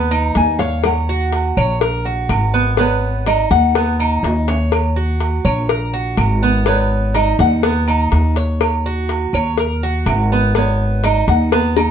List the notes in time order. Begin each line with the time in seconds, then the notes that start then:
Already playing: D#2 B3 B4
0.11 D#4, low agogo, claves
0.35 D#2 G#5, cowbell
0.59 C#5 F5, cowbell
0.84 F#5, cowbell, low agogo, claves
1.09 F#4
1.32 cowbell, low agogo
1.57 A#1 C#5, low agogo, claves
1.81 A#4, cowbell
2.05 F#4
2.29 G#1, cowbell, low agogo, claves
2.54 B3
2.77 B3 C#5, cowbell, low agogo
3.26 D#4 D#5, cowbell, low agogo, claves
3.51 D#2 F#5, cowbell
3.75 B3, cowbell, low agogo
4.00 D#4, low agogo, claves
4.23 D#2, cowbell, high timbale
4.48 C#5, cowbell, low timbale
4.72 cowbell, low agogo, claves
4.96 F#4
5.20 cowbell, low agogo
5.45 A#1 C#5, low agogo, claves
5.69 A#4, cowbell
5.93 F#4
6.17 G#1, cowbell, low agogo, claves
6.43 B3
6.66 B3 C#5, cowbell, low agogo
7.14 D#4 D#5, cowbell, low agogo, claves
7.39 D#2 F#5, cowbell
7.63 B3, cowbell, low agogo
7.88 D#4, low agogo, claves
8.12 D#2, cowbell
8.36 C#5, cowbell
8.61 cowbell, low agogo, claves
8.86 F#4
9.09 cowbell, low agogo
9.33 D#2 C#5, low agogo, claves
9.58 A#4, cowbell
9.83 F#4
10.06 G#1, cowbell, low timbale, low agogo, claves
10.32 B3
10.55 B3 C#5, cowbell, low agogo
11.04 D#4 D#5, cowbell, low agogo, claves
11.28 D#2 F#5, cowbell
11.52 B3, cowbell, low agogo
11.76 D#4, high bongo, low agogo, claves